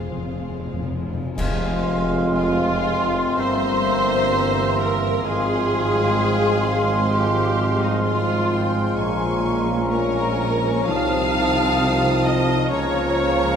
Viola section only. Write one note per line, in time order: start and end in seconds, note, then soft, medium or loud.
0.00 1.17 G#3 soft
0.00 1.17 F4 soft
2.35 3.34 F4 loud
3.38 4.75 C5 loud
4.79 5.26 A#4 medium
5.25 7.13 G#4 loud
7.13 7.80 G4 medium
7.83 8.05 D#4 medium
8.04 8.96 F4 medium
9.90 10.84 A#4 loud
10.87 12.25 F5 loud
12.25 12.70 D#5 loud
12.71 13.56 C#5 loud